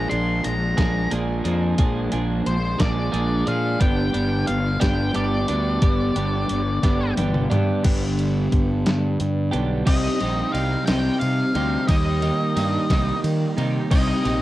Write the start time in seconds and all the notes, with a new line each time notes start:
Already playing: A#2 F3 G#3
0.09 A#1 F3 G#3 A#3 D4 G#4 C6, closed hi-hat
0.43 A#1 A#2 F3 G#3 D4 A#5, closed hi-hat
0.77 A#1 F3 G#3 A#3 D4 G#4, kick, snare, closed hi-hat
1.10 A#1 A#2 F3 G#3 A#3 D4 G#4, closed hi-hat
1.44 F2 F3 G#3 A#3 D4 G#4, closed hi-hat
1.78 A#1 A#2 F3 G#3 A#3 D4 G#4, kick, closed hi-hat
2.12 A#1 F3 G#3 A#3 D4 G#4, closed hi-hat
2.46 A#1 A#2 F3 G#3 D4 C5, closed hi-hat
2.79 A#1 F3 G#3 A#3 D4 G#4 D5, kick, snare, closed hi-hat
3.12 A#1 A#2 F3 G#3 A#3 D4 G#4, closed hi-hat
3.17 D4
3.46 A#2 F3 G#3 A#3 D4 G#4 F5, closed hi-hat
3.80 G1 G2 D3 G3 B3 D4 G4 G5, kick, closed hi-hat
4.13 G1 G3 B3 D4 G4, closed hi-hat
4.46 G1 D3 G3 B3 D4 F5, closed hi-hat
4.80 G1 G3 B3 D4 G4 G5, kick, snare, closed hi-hat
5.14 G1 D3 G3 B3 D4 G4 D5, closed hi-hat
5.48 D2 G3 B3 D4 G4, closed hi-hat
5.81 G1 G2 D3 G3 B3 D4 G4, kick, closed hi-hat
6.16 G1 G3 B3 D4 G4, closed hi-hat
6.49 G1 D3 G3 B3 D4, closed hi-hat
6.83 G1 G3 B3 D4 G4, kick, snare, closed hi-hat
7.17 G1 D3 G3 B3 D4 G4, closed hi-hat, high tom
7.34 mid tom
7.50 G2 G3 B3 D4 G4, closed hi-hat, mid tom
7.83 G1 G2 D3 G3 B3 D4 G4, kick, closed hi-hat, crash
8.19 closed hi-hat
8.52 G1, kick, closed hi-hat
8.86 G2, snare, closed hi-hat
9.20 G2, closed hi-hat
9.51 B1 G2 D3 G3 B3 D4 G4, closed hi-hat
9.85 C2 C3 G3 C4 D#4 G4 D#5, kick, crash, ride
10.20 A#1 C3 G3 C4 D#4 G4, ride
10.52 C2 C3 G3 C4 D#4 G4 F5, ride
10.86 C2 C3 G3 C4 D#4 G4 G5, snare, ride
11.19 C3 F5, ride
11.54 D2 C3 G3 C4 D#4 G4, ride
11.88 D#2 D#3 G3 A#3 D#4 G4 D#5, kick, ride
12.22 D#3 G3 A#3 D#4 G4, ride
12.56 G2 D#3 G3 A#3 D#4 G4, ride
12.89 C2 D#3 G3 A#3 D#4 G4, kick, snare, ride
13.24 D#3, ride
13.57 C3 D#3 G3 A#3 D#4 G4, ride
13.90 C2 C3 G3 C4 D#4 G4 D#5, kick, crash
14.24 A#1 C3 G3 C4 D#4 G4, ride